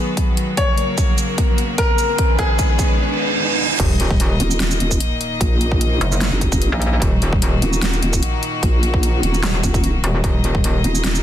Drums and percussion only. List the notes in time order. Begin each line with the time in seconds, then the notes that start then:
0.17 kick, closed hi-hat
0.37 closed hi-hat
0.57 kick, closed hi-hat
0.78 closed hi-hat
0.98 kick, closed hi-hat, shaker
1.18 closed hi-hat, shaker
1.38 kick, closed hi-hat
1.58 closed hi-hat
1.78 kick, closed hi-hat
1.98 closed hi-hat, shaker
2.18 kick, closed hi-hat
2.39 kick, closed hi-hat
2.59 kick, closed hi-hat, shaker
2.79 kick, closed hi-hat, shaker
3.80 kick, closed hi-hat, crash
4.00 closed hi-hat
4.11 kick
4.20 closed hi-hat
4.40 closed hi-hat
4.51 shaker
4.60 snare, closed hi-hat
4.71 shaker
4.80 closed hi-hat
4.91 kick, shaker
5.00 closed hi-hat
5.21 closed hi-hat
5.41 kick, closed hi-hat
5.61 closed hi-hat
5.72 kick
5.81 closed hi-hat
6.01 closed hi-hat
6.12 shaker
6.21 snare, closed hi-hat
6.41 kick, closed hi-hat, shaker
6.52 kick, shaker
6.62 closed hi-hat
6.82 closed hi-hat
7.02 kick, closed hi-hat
7.22 closed hi-hat
7.33 kick
7.42 closed hi-hat
7.62 closed hi-hat
7.73 shaker
7.82 snare, closed hi-hat
7.93 shaker
8.03 closed hi-hat
8.13 kick, shaker
8.23 closed hi-hat
8.43 closed hi-hat
8.63 kick, closed hi-hat
8.83 closed hi-hat
8.94 kick
9.03 closed hi-hat
9.23 closed hi-hat
9.34 shaker
9.43 snare, closed hi-hat
9.63 kick, closed hi-hat, shaker
9.74 kick, shaker
9.84 closed hi-hat
10.04 closed hi-hat
10.24 kick, closed hi-hat
10.44 closed hi-hat
10.55 kick
10.64 closed hi-hat
10.84 closed hi-hat
10.95 shaker
11.04 snare, closed hi-hat
11.15 shaker